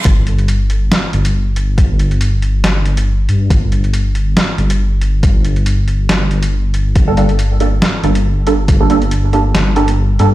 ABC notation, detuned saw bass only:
X:1
M:4/4
L:1/8
Q:"Swing 16ths" 1/4=139
K:Gm
V:1 name="Detuned saw bass" clef=bass
G,,,4 z G,,,3- | G,,, G,,,3 G,,,3 G,, | G,,,4 z G,,,3- | G,,, G,,,3 G,,,4 |
G,,,4 z G,,,3- | G,,, G,,,3 G,,,3 G,, |]